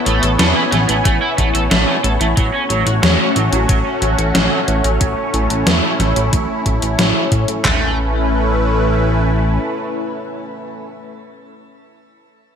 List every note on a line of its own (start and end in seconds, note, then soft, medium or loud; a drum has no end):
0.00 2.33 B3 medium
0.00 2.33 E4 medium
0.00 7.61 C#5 medium
0.00 2.35 G#5 medium
0.06 0.20 A1 medium
0.06 0.19 A3 medium
0.06 closed hi-hat medium
0.23 0.37 A1 medium
0.23 0.28 A4 medium
0.23 closed hi-hat medium
0.39 0.54 E2 loud
0.39 0.52 A3 medium
0.39 snare loud
0.39 closed hi-hat medium
0.56 0.61 E4 medium
0.72 0.86 A1 medium
0.72 0.77 A3 medium
0.72 snare soft
0.72 closed hi-hat medium
0.89 1.03 A1 medium
0.89 0.94 A3 medium
0.89 closed hi-hat medium
1.05 1.19 A1 loud
1.05 1.14 A3 medium
1.05 kick loud
1.05 closed hi-hat medium
1.22 1.30 E4 loud
1.38 1.52 A1 loud
1.38 1.47 A3 medium
1.38 kick medium
1.38 closed hi-hat medium
1.55 1.69 A1 medium
1.55 1.60 A4 loud
1.55 closed hi-hat medium
1.71 1.85 A1 loud
1.71 1.84 A3 medium
1.71 snare loud
1.71 closed hi-hat medium
1.88 1.93 A3 medium
2.04 2.18 A1 medium
2.04 2.09 A4 medium
2.04 closed hi-hat medium
2.21 2.35 A1 medium
2.21 2.26 A3 medium
2.21 closed hi-hat medium
2.37 2.51 A1 loud
2.37 2.45 F#3 medium
2.37 7.61 A3 medium
2.37 7.61 C#4 medium
2.37 4.99 F#4 medium
2.37 kick loud
2.37 closed hi-hat medium
2.54 2.62 C#4 loud
2.70 2.84 A1 medium
2.70 2.83 F#3 medium
2.70 closed hi-hat medium
2.86 3.01 A1 medium
2.86 2.92 F#4 medium
2.86 closed hi-hat medium
3.03 3.17 E2 medium
3.03 3.16 F#3 medium
3.03 snare loud
3.03 closed hi-hat medium
3.20 3.25 C#4 medium
3.36 3.50 A1 medium
3.36 3.41 F#3 medium
3.36 closed hi-hat medium
3.52 3.67 A1 medium
3.52 3.58 F#3 medium
3.52 closed hi-hat medium
3.69 3.83 A1 loud
3.69 3.77 F#3 medium
3.69 kick loud
3.69 closed hi-hat medium
3.86 3.94 C#4 loud
4.02 4.16 A1 medium
4.02 4.10 F#3 medium
4.02 closed hi-hat medium
4.19 4.33 A1 medium
4.19 4.24 F#4 medium
4.19 closed hi-hat medium
4.35 4.49 A1 medium
4.35 4.47 F#3 medium
4.35 snare loud
4.35 closed hi-hat medium
4.52 4.57 F#3 medium
4.68 4.82 A1 medium
4.68 4.73 F#4 medium
4.68 closed hi-hat medium
4.84 4.98 A1 medium
4.84 4.90 F#3 medium
4.84 closed hi-hat medium
5.01 5.15 A1 loud
5.01 5.09 F#3 medium
5.01 7.62 E4 medium
5.01 kick loud
5.01 closed hi-hat medium
5.18 5.26 C#4 medium
5.34 5.48 A1 medium
5.34 5.46 F#3 medium
5.34 closed hi-hat medium
5.50 5.64 A1 medium
5.50 5.55 F#4 medium
5.50 closed hi-hat medium
5.67 5.81 E2 loud
5.67 5.79 F#3 medium
5.67 snare loud
5.67 closed hi-hat medium
5.84 5.89 C#4 medium
6.00 6.14 A1 medium
6.00 6.05 F#3 medium
6.00 snare soft
6.00 closed hi-hat medium
6.16 6.30 A1 medium
6.16 6.22 F#3 medium
6.16 closed hi-hat medium
6.33 6.47 A1 loud
6.33 6.41 F#3 medium
6.33 kick loud
6.33 closed hi-hat medium
6.50 6.58 C#4 medium
6.66 6.80 A1 medium
6.66 6.74 F#3 medium
6.66 kick medium
6.66 closed hi-hat medium
6.82 6.96 A1 medium
6.82 6.87 F#4 medium
6.82 closed hi-hat medium
6.99 7.13 A1 medium
6.99 7.11 F#3 medium
6.99 snare loud
6.99 closed hi-hat medium
7.16 7.20 F#3 medium
7.32 7.46 A2 medium
7.32 7.37 F#4 medium
7.32 kick medium
7.32 closed hi-hat medium
7.48 7.62 A2 medium
7.48 7.53 F#3 medium
7.48 closed hi-hat medium
7.65 9.59 A1 medium
7.65 10.79 A3 medium
7.65 7.96 A3 medium
7.65 10.79 C#4 medium
7.65 10.79 E4 medium
7.65 10.79 B4 medium
7.65 kick medium
7.65 clap medium
7.65 floor tom medium